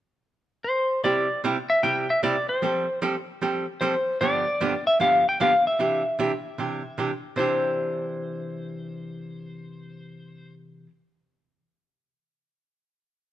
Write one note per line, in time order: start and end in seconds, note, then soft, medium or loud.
0.64 1.01 C5 medium
1.04 1.26 C3 medium
1.04 1.27 G3 medium
1.04 1.27 C4 medium
1.04 1.27 E4 medium
1.04 1.27 G4 medium
1.04 1.41 D5 loud
1.44 1.56 C3 medium
1.44 1.56 G3 medium
1.44 1.56 C4 medium
1.44 1.56 E4 medium
1.44 1.57 G4 medium
1.70 1.82 E5 medium
1.83 2.06 C3 medium
1.83 2.06 G3 medium
1.83 2.06 C4 medium
1.83 2.06 E4 medium
1.83 2.06 G4 medium
1.83 2.10 G5 loud
2.10 2.23 E5 medium
2.23 2.35 C3 medium
2.23 2.35 G3 medium
2.23 2.35 C4 medium
2.23 2.35 E4 medium
2.23 2.35 G4 medium
2.23 2.48 D5 medium
2.49 2.99 C5 medium
2.62 2.85 F3 medium
2.62 2.85 G3 medium
2.62 2.85 C4 medium
2.62 2.86 G4 medium
2.62 2.86 A4 medium
3.02 3.14 F3 medium
3.02 3.14 G3 medium
3.02 3.14 C4 medium
3.02 3.15 G4 medium
3.02 3.15 A4 medium
3.42 3.64 F3 medium
3.42 3.65 G3 medium
3.42 3.65 C4 medium
3.42 3.65 G4 medium
3.42 3.65 A4 medium
3.81 3.93 F3 medium
3.81 3.93 G3 medium
3.81 3.94 C4 medium
3.81 3.94 G4 medium
3.81 3.94 A4 medium
3.81 4.18 C5 medium
4.21 4.44 G2 medium
4.21 4.44 D3 medium
4.21 4.44 F3 medium
4.21 4.44 B3 medium
4.21 4.44 D4 medium
4.21 4.44 G4 medium
4.21 4.87 D5 loud
4.61 4.73 G2 medium
4.61 4.73 D3 medium
4.61 4.73 F3 medium
4.61 4.73 B3 medium
4.61 4.73 D4 medium
4.61 4.73 G4 medium
4.87 5.00 E5 medium
5.00 5.22 G2 medium
5.00 5.23 D3 medium
5.00 5.23 F3 medium
5.00 5.23 B3 medium
5.00 5.23 D4 medium
5.00 5.23 G4 medium
5.00 5.28 F5 loud
5.29 5.41 G5 medium
5.40 5.52 G2 medium
5.40 5.52 D3 medium
5.40 5.52 F3 medium
5.40 5.52 B3 medium
5.40 5.52 D4 medium
5.40 5.52 G4 medium
5.40 5.65 F5 loud
5.67 6.99 E5 medium
5.79 6.02 C3 medium
5.79 6.02 E3 medium
5.79 6.02 D4 medium
5.79 6.03 G4 medium
6.19 6.31 C3 medium
6.19 6.31 E3 medium
6.19 6.31 D4 medium
6.19 6.31 G4 medium
6.58 6.81 C3 medium
6.58 6.81 E3 medium
6.58 6.82 D4 medium
6.58 6.82 G4 medium
6.98 7.10 C3 medium
6.98 7.10 E3 medium
6.98 7.10 D4 medium
6.98 7.11 G4 medium
7.36 10.86 C3 medium
7.36 10.88 E3 medium
7.36 10.89 D4 medium
7.36 10.90 G4 medium
7.36 10.54 C5 medium